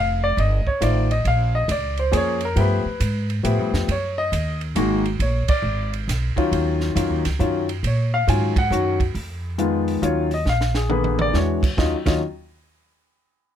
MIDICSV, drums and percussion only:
0, 0, Header, 1, 2, 480
1, 0, Start_track
1, 0, Key_signature, -6, "minor"
1, 0, Tempo, 437956
1, 1377, Time_signature, 3, 2, 24, 8
1, 14858, End_track
2, 0, Start_track
2, 0, Title_t, "Drums"
2, 414, Note_on_c, 9, 36, 23
2, 420, Note_on_c, 9, 51, 50
2, 524, Note_off_c, 9, 36, 0
2, 529, Note_off_c, 9, 51, 0
2, 730, Note_on_c, 9, 36, 44
2, 840, Note_off_c, 9, 36, 0
2, 895, Note_on_c, 9, 36, 24
2, 897, Note_on_c, 9, 44, 53
2, 897, Note_on_c, 9, 51, 58
2, 1004, Note_off_c, 9, 36, 0
2, 1006, Note_off_c, 9, 44, 0
2, 1006, Note_off_c, 9, 51, 0
2, 1215, Note_on_c, 9, 51, 41
2, 1325, Note_off_c, 9, 51, 0
2, 1372, Note_on_c, 9, 36, 18
2, 1373, Note_on_c, 9, 51, 52
2, 1481, Note_off_c, 9, 36, 0
2, 1482, Note_off_c, 9, 51, 0
2, 1851, Note_on_c, 9, 36, 20
2, 1851, Note_on_c, 9, 44, 50
2, 1851, Note_on_c, 9, 51, 62
2, 1960, Note_off_c, 9, 36, 0
2, 1961, Note_off_c, 9, 44, 0
2, 1961, Note_off_c, 9, 51, 0
2, 2164, Note_on_c, 9, 51, 41
2, 2274, Note_off_c, 9, 51, 0
2, 2330, Note_on_c, 9, 36, 25
2, 2336, Note_on_c, 9, 44, 55
2, 2336, Note_on_c, 9, 51, 67
2, 2440, Note_off_c, 9, 36, 0
2, 2446, Note_off_c, 9, 44, 0
2, 2446, Note_off_c, 9, 51, 0
2, 2637, Note_on_c, 9, 51, 46
2, 2747, Note_off_c, 9, 51, 0
2, 2811, Note_on_c, 9, 36, 25
2, 2812, Note_on_c, 9, 51, 58
2, 2920, Note_off_c, 9, 36, 0
2, 2922, Note_off_c, 9, 51, 0
2, 3292, Note_on_c, 9, 36, 24
2, 3293, Note_on_c, 9, 44, 61
2, 3293, Note_on_c, 9, 51, 64
2, 3402, Note_off_c, 9, 36, 0
2, 3403, Note_off_c, 9, 44, 0
2, 3403, Note_off_c, 9, 51, 0
2, 3614, Note_on_c, 9, 51, 42
2, 3724, Note_off_c, 9, 51, 0
2, 3774, Note_on_c, 9, 36, 24
2, 3777, Note_on_c, 9, 44, 61
2, 3777, Note_on_c, 9, 51, 62
2, 3883, Note_off_c, 9, 36, 0
2, 3887, Note_off_c, 9, 44, 0
2, 3887, Note_off_c, 9, 51, 0
2, 4097, Note_on_c, 9, 38, 49
2, 4207, Note_off_c, 9, 38, 0
2, 4257, Note_on_c, 9, 36, 24
2, 4260, Note_on_c, 9, 51, 59
2, 4367, Note_off_c, 9, 36, 0
2, 4370, Note_off_c, 9, 51, 0
2, 4738, Note_on_c, 9, 36, 19
2, 4744, Note_on_c, 9, 44, 58
2, 4744, Note_on_c, 9, 51, 66
2, 4848, Note_off_c, 9, 36, 0
2, 4854, Note_off_c, 9, 44, 0
2, 4854, Note_off_c, 9, 51, 0
2, 5054, Note_on_c, 9, 51, 38
2, 5164, Note_off_c, 9, 51, 0
2, 5214, Note_on_c, 9, 44, 50
2, 5214, Note_on_c, 9, 51, 65
2, 5216, Note_on_c, 9, 36, 17
2, 5324, Note_off_c, 9, 44, 0
2, 5324, Note_off_c, 9, 51, 0
2, 5325, Note_off_c, 9, 36, 0
2, 5540, Note_on_c, 9, 51, 41
2, 5650, Note_off_c, 9, 51, 0
2, 5699, Note_on_c, 9, 36, 20
2, 5700, Note_on_c, 9, 51, 63
2, 5809, Note_off_c, 9, 36, 0
2, 5810, Note_off_c, 9, 51, 0
2, 6010, Note_on_c, 9, 51, 74
2, 6014, Note_on_c, 9, 36, 77
2, 6120, Note_off_c, 9, 51, 0
2, 6124, Note_off_c, 9, 36, 0
2, 6505, Note_on_c, 9, 51, 42
2, 6615, Note_off_c, 9, 51, 0
2, 6666, Note_on_c, 9, 36, 17
2, 6674, Note_on_c, 9, 38, 35
2, 6677, Note_on_c, 9, 44, 65
2, 6677, Note_on_c, 9, 51, 68
2, 6776, Note_off_c, 9, 36, 0
2, 6784, Note_off_c, 9, 38, 0
2, 6786, Note_off_c, 9, 44, 0
2, 6786, Note_off_c, 9, 51, 0
2, 6981, Note_on_c, 9, 36, 51
2, 6988, Note_on_c, 9, 51, 44
2, 7091, Note_off_c, 9, 36, 0
2, 7097, Note_off_c, 9, 51, 0
2, 7147, Note_on_c, 9, 36, 20
2, 7153, Note_on_c, 9, 51, 59
2, 7256, Note_off_c, 9, 36, 0
2, 7263, Note_off_c, 9, 51, 0
2, 7459, Note_on_c, 9, 38, 32
2, 7569, Note_off_c, 9, 38, 0
2, 7628, Note_on_c, 9, 36, 24
2, 7634, Note_on_c, 9, 44, 58
2, 7634, Note_on_c, 9, 51, 67
2, 7738, Note_off_c, 9, 36, 0
2, 7744, Note_off_c, 9, 44, 0
2, 7744, Note_off_c, 9, 51, 0
2, 7944, Note_on_c, 9, 38, 31
2, 7946, Note_on_c, 9, 51, 61
2, 8054, Note_off_c, 9, 38, 0
2, 8056, Note_off_c, 9, 51, 0
2, 8109, Note_on_c, 9, 36, 20
2, 8111, Note_on_c, 9, 44, 54
2, 8218, Note_off_c, 9, 36, 0
2, 8221, Note_off_c, 9, 44, 0
2, 8429, Note_on_c, 9, 51, 45
2, 8539, Note_off_c, 9, 51, 0
2, 8590, Note_on_c, 9, 36, 25
2, 8593, Note_on_c, 9, 51, 59
2, 8700, Note_off_c, 9, 36, 0
2, 8703, Note_off_c, 9, 51, 0
2, 9072, Note_on_c, 9, 36, 25
2, 9079, Note_on_c, 9, 44, 50
2, 9079, Note_on_c, 9, 51, 70
2, 9182, Note_off_c, 9, 36, 0
2, 9189, Note_off_c, 9, 44, 0
2, 9189, Note_off_c, 9, 51, 0
2, 9386, Note_on_c, 9, 36, 78
2, 9389, Note_on_c, 9, 51, 68
2, 9495, Note_off_c, 9, 36, 0
2, 9498, Note_off_c, 9, 51, 0
2, 9558, Note_on_c, 9, 44, 61
2, 9668, Note_off_c, 9, 44, 0
2, 9864, Note_on_c, 9, 36, 51
2, 9868, Note_on_c, 9, 51, 46
2, 9974, Note_off_c, 9, 36, 0
2, 9978, Note_off_c, 9, 51, 0
2, 10029, Note_on_c, 9, 36, 31
2, 10031, Note_on_c, 9, 46, 43
2, 10139, Note_off_c, 9, 36, 0
2, 10141, Note_off_c, 9, 46, 0
2, 10507, Note_on_c, 9, 42, 49
2, 10617, Note_off_c, 9, 42, 0
2, 10827, Note_on_c, 9, 46, 36
2, 10937, Note_off_c, 9, 46, 0
2, 10993, Note_on_c, 9, 42, 53
2, 11102, Note_off_c, 9, 42, 0
2, 11301, Note_on_c, 9, 46, 35
2, 11411, Note_off_c, 9, 46, 0
2, 11465, Note_on_c, 9, 38, 43
2, 11575, Note_off_c, 9, 38, 0
2, 11627, Note_on_c, 9, 38, 47
2, 11737, Note_off_c, 9, 38, 0
2, 11777, Note_on_c, 9, 38, 57
2, 11887, Note_off_c, 9, 38, 0
2, 11943, Note_on_c, 9, 47, 57
2, 12052, Note_off_c, 9, 47, 0
2, 12102, Note_on_c, 9, 47, 62
2, 12211, Note_off_c, 9, 47, 0
2, 12262, Note_on_c, 9, 47, 73
2, 12371, Note_off_c, 9, 47, 0
2, 12429, Note_on_c, 9, 38, 50
2, 12538, Note_off_c, 9, 38, 0
2, 12744, Note_on_c, 9, 36, 69
2, 12753, Note_on_c, 9, 49, 64
2, 12854, Note_off_c, 9, 36, 0
2, 12862, Note_off_c, 9, 49, 0
2, 12910, Note_on_c, 9, 36, 80
2, 12911, Note_on_c, 9, 38, 72
2, 13020, Note_off_c, 9, 36, 0
2, 13021, Note_off_c, 9, 38, 0
2, 13222, Note_on_c, 9, 36, 78
2, 13223, Note_on_c, 9, 38, 76
2, 13223, Note_on_c, 9, 49, 69
2, 13332, Note_off_c, 9, 36, 0
2, 13332, Note_off_c, 9, 38, 0
2, 13332, Note_off_c, 9, 49, 0
2, 14858, End_track
0, 0, End_of_file